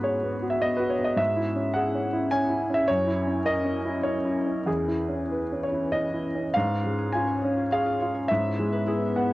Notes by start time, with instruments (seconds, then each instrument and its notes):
Already playing: grand piano G#2 B3 F#4 B4, ambient pad B3 F#4 G#4
0.03 grand piano G#4 C#5
0.24 grand piano B3
0.42 grand piano F#4
0.50 grand piano E5
0.61 grand piano B3 D#5
0.77 grand piano F#4 B4
0.90 grand piano C#5
0.99 grand piano B3
1.04 grand piano D#5
1.16 grand piano G#2 E5, ambient pad C#4 E4
1.36 grand piano E4
1.55 grand piano C#4
1.74 grand piano G#4 F#5
1.95 grand piano C#4
2.13 grand piano E4
2.31 grand piano C#4 G#5
2.50 grand piano E4
2.69 grand piano C#4
2.74 grand piano E5
2.88 grand piano F#2 C#5, ambient pad A#4
3.07 grand piano E4
3.27 grand piano C#4
3.45 grand piano A#4 D#5
3.64 grand piano C#4
3.85 grand piano E4
4.03 grand piano C#4 C#5
4.25 grand piano E4
4.46 grand piano C#4
4.66 grand piano E2 G#4, ambient pad B4
4.88 grand piano E4
5.09 grand piano C#4
5.32 grand piano B4
5.52 grand piano C#4
5.63 grand piano C#5
5.73 grand piano E4
5.92 grand piano C#4 D#5
6.14 grand piano E4
6.35 grand piano C#4
6.54 grand piano G#2 F5, harp C#4, ambient pad C#4 G#4 C#5
6.83 grand piano G#3, harp F4
6.98 harp G#4
7.12 harp C#4, grand piano F4 G#5
7.27 harp C#5
7.41 grand piano C#4, harp G#4
7.57 harp F4
7.71 harp C#4, grand piano G#4 F5
7.86 harp F4
8.00 grand piano F4, harp C#5
8.14 harp C#5
8.28 grand piano G#2 E5, ambient pad B3 E5, harp E4
8.58 grand piano G#3, harp G#4
8.73 harp B4
8.86 harp E4, grand piano G#4
9.02 harp E5
9.16 grand piano B3 F#5, harp B4